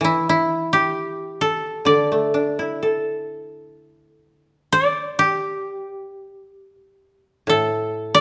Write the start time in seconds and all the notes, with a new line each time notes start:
0.01 E3 E4
0.29 E4
0.73 G4
1.41 A4
1.85 D3 D5
2.12 A3
2.34 D4
2.59 E4
2.83 A4
4.72 D5
5.19 G4
7.47 A2 A4
8.15 D5